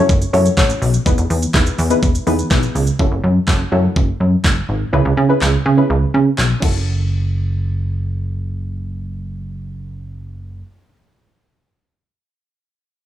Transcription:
Already playing: C#4 E4 F#4 A4 C#5
0.09 F#1, kick, shaker
0.22 closed hi-hat, shaker
0.33 F#2 C#4 E4 F#4 A4 C#5, open hi-hat, shaker
0.46 closed hi-hat, shaker
0.57 A1 C#4 E4 F#4 A4 C#5, kick, snare, clap, shaker
0.70 closed hi-hat, shaker
0.82 B1, open hi-hat, shaker
0.94 closed hi-hat, shaker
1.06 E1 B3 D#4 E4 G#4 B4, kick, shaker
1.18 E1, closed hi-hat, shaker
1.30 E2, open hi-hat, shaker
1.43 closed hi-hat, shaker
1.54 E1 B3 D#4 E4 G#4 B4, kick, snare, clap, shaker
1.67 closed hi-hat, shaker
1.78 E2, open hi-hat, shaker
1.90 B3 D#4 E4 G#4 B4, closed hi-hat, shaker
2.03 E1, kick, shaker
2.15 closed hi-hat, shaker
2.27 E2 B3 D#4 E4 G#4 B4, open hi-hat, shaker
2.39 closed hi-hat, shaker
2.51 B1 B3 D#4 E4 G#4 B4, kick, snare, clap, shaker
2.63 closed hi-hat, shaker
2.75 C#2, open hi-hat, shaker
2.87 closed hi-hat, shaker
2.99 F#1 C#4 E4 F#4 A4, kick
3.11 F#1
3.24 F#2
3.48 F#1 C#4 E4 F#4 A4, kick, snare, clap
3.72 F#2 C#4 E4 F#4 A4
3.96 F#1, kick
4.20 F#2
4.44 F#1, kick, snare, clap
4.69 G#1
4.93 C#2 C#4 E4 G#4 B4
5.05 C#2
5.17 C#3
5.29 C#4 E4 G#4 B4
5.42 C#2, snare, clap
5.66 C#3
5.77 C#4 E4 G#4 B4
5.90 C#2
6.14 C#3
6.38 B1, snare, clap
6.60 F#1 C#4 E4 F#4 A4, kick, crash

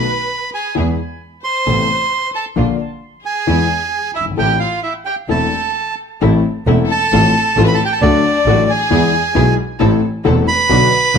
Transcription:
Already playing: B4 B5
0.54 G#4 G#5
0.75 E2 E3 G#3 B3 E4 G#4
1.44 C5 C6
1.66 A1 A2 C3 A3 B3 C4 E4 A4
2.35 A4 A5
2.56 A#1 A#2 D3 F3 A#3 D4 F4
3.25 G#4 G#5
3.47 E2 E3 G#3 B3 E4 G#4
4.15 G1 E4 E5
4.21 F#1
4.26 G1
4.31 G#1
4.37 A1 A2 E3 A3 C4 E4 G4 A4 G5
4.59 F4 F5
4.83 E4 E5
5.05 G4 G5
5.28 E1 E2 E3 A3 C4 E4 A4 A5
6.21 A1 A2 E3 A3 C4 E4 A4
6.66 E1 E2 E3 A3 C4 E4 A4
6.89 A4 A5
7.12 A1 A2 F3 A3 C4 F4 A4
7.57 A1 A2 F3 A3 C4 F4 A4
7.64 B4 B5
7.74 A4 A5
7.84 G4 G5
7.93 A4 A5
8.01 D2 D3 F#3 A3 D4 F#4 A4 D5
8.46 A1 A2 F#3 A3 D4 F#4 A4
8.70 G#4 G#5
8.90 E2 E3 G#3 B3 E4 G#4
9.35 B1 B2 E3 G#3 B3 E4 G#4
9.79 A1 A2 E3 A3 C4 E4 A4
10.25 E1 E2 E3 A3 C4 E4 A4
10.48 B4 B5
10.69 B1 B2 D3 F#3 B3 D4 F#4 B4
11.15 D3

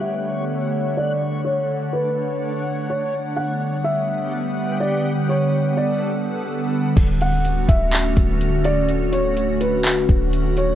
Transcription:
Already playing: D3 A3 D4 C#5 F#5
0.01 E5
0.97 D5
1.21 C#5
1.45 C#5
1.93 B4
2.90 C#5
3.13 D3 G3 B3 G4
3.36 F#5
3.84 E5
4.80 D5
5.05 A4
5.29 C#5
5.77 D5
6.97 D1 D3 A3 C#4 F#4, kick, closed hi-hat, crash
7.21 F#5, closed hi-hat
7.45 closed hi-hat
7.68 D1 E5, kick, closed hi-hat
7.93 clap, closed hi-hat
8.17 D1, kick, closed hi-hat
8.41 closed hi-hat
8.65 D5, closed hi-hat
8.89 closed hi-hat
9.12 C#5, closed hi-hat
9.37 closed hi-hat
9.61 B4, closed hi-hat
9.85 clap, closed hi-hat
10.09 D1, kick, closed hi-hat
10.33 closed hi-hat
10.57 C#5, closed hi-hat

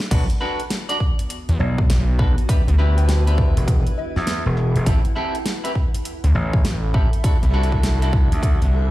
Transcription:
0.00 snare
0.11 B1 B3 D4 F#4 A4 B4, kick, closed hi-hat, crash
0.30 closed hi-hat
0.41 D4 F#4 A4 B4, snare
0.60 F#4, closed hi-hat
0.70 snare, closed hi-hat
0.89 D4 F#4 A4 D5, closed hi-hat
1.00 kick
1.19 B4, closed hi-hat
1.30 closed hi-hat
1.49 E2, closed hi-hat
1.60 B1 D5
1.78 kick
1.89 B1, snare, closed hi-hat
2.19 D4 F#4 A4 B4, kick
2.38 closed hi-hat
2.49 D4 E4 G4 B4, kick, closed hi-hat
2.68 D2, closed hi-hat
2.78 D4 E4 G4 B4, snare
2.97 G5, closed hi-hat
3.08 G5, snare, closed hi-hat
3.27 D4 E4 G4 B4, closed hi-hat
3.38 kick
3.57 E1 F#5, closed hi-hat
3.68 kick, closed hi-hat
3.87 closed hi-hat
3.98 E5
4.16 E2, snare
4.27 snare, closed hi-hat
4.46 E1
4.57 snare
4.76 E1, closed hi-hat
4.86 A1 C4 E4 G4 A4, kick, closed hi-hat
5.05 closed hi-hat
5.16 C4 E4 G4 A4, snare
5.35 closed hi-hat
5.41 E5 B5
5.46 snare, closed hi-hat
5.64 C4 E4 G4 B4, closed hi-hat
5.75 kick
5.94 closed hi-hat
6.05 closed hi-hat
6.24 D2, closed hi-hat
6.35 A1
6.53 kick
6.65 A1, snare, closed hi-hat
6.94 C4 E4 G4 A4, kick
7.13 closed hi-hat
7.24 D4 E4 F#4 A4, kick, closed hi-hat
7.43 C2, closed hi-hat
7.54 D4 E4 F#4 A4, snare
7.63 closed hi-hat
7.72 kick
7.83 snare, closed hi-hat
8.02 D4 E4 F#4 A4, closed hi-hat
8.13 kick
8.32 D2, closed hi-hat
8.43 kick, closed hi-hat
8.62 C2, closed hi-hat

